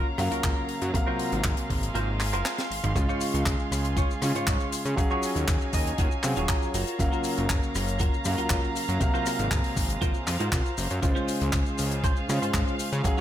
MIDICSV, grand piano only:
0, 0, Header, 1, 2, 480
1, 0, Start_track
1, 0, Key_signature, -5, "major"
1, 0, Tempo, 504202
1, 899, Time_signature, 4, 2, 24, 8
1, 12574, End_track
2, 0, Start_track
2, 0, Title_t, "Grand piano"
2, 0, Program_c, 0, 0
2, 0, Note_on_c, 0, 49, 92
2, 0, Note_on_c, 0, 54, 85
2, 0, Note_on_c, 0, 58, 86
2, 0, Note_on_c, 0, 77, 103
2, 146, Note_off_c, 0, 49, 0
2, 149, Note_off_c, 0, 54, 0
2, 152, Note_off_c, 0, 58, 0
2, 156, Note_off_c, 0, 77, 0
2, 168, Note_on_c, 0, 49, 78
2, 175, Note_on_c, 0, 54, 70
2, 181, Note_on_c, 0, 58, 74
2, 187, Note_on_c, 0, 77, 88
2, 865, Note_off_c, 0, 49, 0
2, 869, Note_off_c, 0, 54, 0
2, 872, Note_off_c, 0, 58, 0
2, 875, Note_off_c, 0, 77, 0
2, 888, Note_on_c, 0, 48, 92
2, 896, Note_on_c, 0, 54, 88
2, 900, Note_on_c, 0, 58, 84
2, 906, Note_on_c, 0, 77, 100
2, 2065, Note_off_c, 0, 48, 0
2, 2069, Note_off_c, 0, 54, 0
2, 2071, Note_off_c, 0, 58, 0
2, 2074, Note_off_c, 0, 77, 0
2, 2805, Note_on_c, 0, 49, 92
2, 2811, Note_on_c, 0, 56, 88
2, 2824, Note_on_c, 0, 65, 100
2, 3984, Note_off_c, 0, 49, 0
2, 3987, Note_off_c, 0, 56, 0
2, 3994, Note_off_c, 0, 65, 0
2, 4009, Note_on_c, 0, 49, 78
2, 4017, Note_on_c, 0, 56, 71
2, 4030, Note_on_c, 0, 65, 85
2, 4706, Note_off_c, 0, 49, 0
2, 4710, Note_off_c, 0, 56, 0
2, 4716, Note_off_c, 0, 65, 0
2, 4726, Note_on_c, 0, 54, 98
2, 4733, Note_on_c, 0, 61, 89
2, 4740, Note_on_c, 0, 77, 88
2, 4746, Note_on_c, 0, 68, 106
2, 5904, Note_off_c, 0, 54, 0
2, 5908, Note_off_c, 0, 61, 0
2, 5911, Note_off_c, 0, 77, 0
2, 5914, Note_off_c, 0, 68, 0
2, 5936, Note_on_c, 0, 54, 83
2, 5941, Note_on_c, 0, 61, 72
2, 5942, Note_on_c, 0, 77, 71
2, 5947, Note_on_c, 0, 68, 88
2, 6403, Note_off_c, 0, 54, 0
2, 6406, Note_off_c, 0, 61, 0
2, 6407, Note_off_c, 0, 77, 0
2, 6409, Note_off_c, 0, 68, 0
2, 6648, Note_on_c, 0, 49, 96
2, 6656, Note_on_c, 0, 54, 88
2, 6662, Note_on_c, 0, 58, 89
2, 6668, Note_on_c, 0, 77, 104
2, 7825, Note_off_c, 0, 49, 0
2, 7829, Note_off_c, 0, 54, 0
2, 7832, Note_off_c, 0, 58, 0
2, 7835, Note_off_c, 0, 77, 0
2, 7846, Note_on_c, 0, 49, 79
2, 7851, Note_on_c, 0, 54, 72
2, 7858, Note_on_c, 0, 58, 69
2, 7864, Note_on_c, 0, 77, 86
2, 8544, Note_off_c, 0, 49, 0
2, 8547, Note_off_c, 0, 54, 0
2, 8550, Note_off_c, 0, 58, 0
2, 8553, Note_off_c, 0, 77, 0
2, 8563, Note_on_c, 0, 48, 94
2, 8570, Note_on_c, 0, 54, 86
2, 8578, Note_on_c, 0, 58, 86
2, 8583, Note_on_c, 0, 77, 106
2, 9743, Note_off_c, 0, 48, 0
2, 9747, Note_off_c, 0, 54, 0
2, 9750, Note_off_c, 0, 58, 0
2, 9753, Note_off_c, 0, 77, 0
2, 10485, Note_on_c, 0, 49, 95
2, 10492, Note_on_c, 0, 56, 86
2, 10499, Note_on_c, 0, 72, 87
2, 10503, Note_on_c, 0, 65, 100
2, 11664, Note_off_c, 0, 49, 0
2, 11667, Note_off_c, 0, 56, 0
2, 11671, Note_off_c, 0, 72, 0
2, 11673, Note_off_c, 0, 65, 0
2, 11689, Note_on_c, 0, 49, 80
2, 11696, Note_on_c, 0, 56, 72
2, 11701, Note_on_c, 0, 72, 71
2, 11706, Note_on_c, 0, 65, 88
2, 12386, Note_off_c, 0, 49, 0
2, 12389, Note_off_c, 0, 56, 0
2, 12392, Note_off_c, 0, 72, 0
2, 12395, Note_off_c, 0, 65, 0
2, 12409, Note_on_c, 0, 54, 95
2, 12417, Note_on_c, 0, 61, 87
2, 12421, Note_on_c, 0, 77, 86
2, 12428, Note_on_c, 0, 68, 110
2, 12574, Note_off_c, 0, 54, 0
2, 12574, Note_off_c, 0, 61, 0
2, 12574, Note_off_c, 0, 68, 0
2, 12574, Note_off_c, 0, 77, 0
2, 12574, End_track
0, 0, End_of_file